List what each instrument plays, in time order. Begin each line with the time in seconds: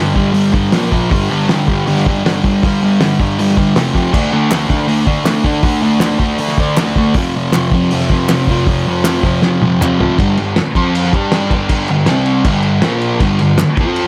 Already playing: distorted electric guitar G2 D3 G3
0.14 distorted electric guitar G2 D3 G3, kick
0.33 distorted electric guitar G2 D3 G3, open hi-hat
0.53 distorted electric guitar G2 D3 G3, kick
0.72 distorted electric guitar A#2 F3 A#3, snare, open hi-hat
0.92 distorted electric guitar A#2 F3 A#3, kick
1.11 distorted electric guitar G2 D3 G3, kick, open hi-hat
1.30 distorted electric guitar G2 D3 G3
1.49 distorted electric guitar G2 D3 G3, snare, open hi-hat
1.67 distorted electric guitar G2 D3 G3, kick
1.86 distorted electric guitar G2 D3 G3, open hi-hat
1.97 snare
2.06 distorted electric guitar G2 D3 G3, kick
2.24 distorted electric guitar G2 D3 G3, snare, open hi-hat
2.44 distorted electric guitar G2 D3 G3, kick
2.63 distorted electric guitar G2 D3 G3, kick, open hi-hat
2.82 distorted electric guitar G2 D3 G3
3.01 distorted electric guitar G2 D3 G3, snare, open hi-hat
3.19 distorted electric guitar G2 D3 G3, kick
3.39 distorted electric guitar G2 D3 G3, open hi-hat
3.48 snare
3.57 distorted electric guitar G2 D3 G3, kick
3.76 distorted electric guitar F2 C3 F3, snare, open hi-hat
3.94 distorted electric guitar F2 C3 F3, kick
4.13 distorted electric guitar D3 A3 D4, kick, crash
4.32 distorted electric guitar D3 A3 D4
4.51 distorted electric guitar D3 A3 D4, snare, clap, open hi-hat
4.68 distorted electric guitar D3 A3 D4, kick, snare
4.87 distorted electric guitar D3 A3 D4, open hi-hat
5.07 distorted electric guitar D3 A3 D4, kick
5.25 distorted electric guitar D3 A3 D4, snare, clap, open hi-hat
5.44 distorted electric guitar D3 A3 D4, kick
5.62 distorted electric guitar D3 A3 D4, kick, open hi-hat
5.81 distorted electric guitar D3 A3 D4
6.00 distorted electric guitar D3 A3 D4, snare, clap, open hi-hat
6.19 distorted electric guitar D3 A3 D4, kick
6.38 distorted electric guitar D3 A3 D4, open hi-hat
6.48 snare
6.58 distorted electric guitar D3 A3 D4, kick
6.77 distorted electric guitar D3 A3 D4, snare, clap, open hi-hat
6.96 distorted electric guitar D3 A3 D4, kick
7.14 distorted electric guitar F2 C3 F3, kick, open hi-hat
7.36 distorted electric guitar F2 C3 F3
7.52 distorted electric guitar F2 C3 F3, snare, clap, open hi-hat
7.72 distorted electric guitar F2 C3 F3, kick
7.91 distorted electric guitar F2 C3 F3, open hi-hat
8.01 snare
8.10 distorted electric guitar F2 C3 F3, kick
8.29 distorted electric guitar F2 C3 F3, snare, clap, open hi-hat
8.47 distorted electric guitar F2 C3 F3, kick
8.67 distorted electric guitar F2 C3 F3, kick, open hi-hat
8.86 distorted electric guitar F2 C3 F3
9.04 distorted electric guitar F2 C3 F3, snare, clap, open hi-hat
9.23 distorted electric guitar F2 C3 F3, kick, snare
9.42 distorted electric guitar F2 C3 F3, snare
9.61 distorted electric guitar F2 C3 F3, high tom
9.81 distorted electric guitar F2 C3 F3, clap, mid tom
9.99 distorted electric guitar F2 C3 F3, floor tom
10.19 distorted electric guitar G2 D3 G3, kick, crash
10.37 distorted electric guitar G2 D3, crash
10.56 muted distorted electric guitar stroke, snare, crash
10.75 distorted electric guitar F3 C4 F4, kick, crash
10.95 crash
11.04 snare
11.13 distorted electric guitar G3 D4 G4, kick, crash
11.32 snare, crash
11.41 snare
11.51 distorted electric guitar G2 D3 G3, kick, crash
11.69 kick, crash
11.88 distorted electric guitar G2 D3, crash
12.06 distorted electric guitar C3 G3 C4, snare, crash
12.25 crash
12.44 distorted electric guitar G2 D3 G3, kick, crash
12.62 crash
12.82 distorted electric guitar A#2 F3 A#3, snare, crash
13.01 crash
13.20 distorted electric guitar G2 D3 G3, kick, crash
13.39 distorted electric guitar G2 D3, crash
13.58 muted distorted electric guitar stroke, snare, clap, crash
13.77 distorted electric guitar F3 C4 F4, kick, crash
13.96 crash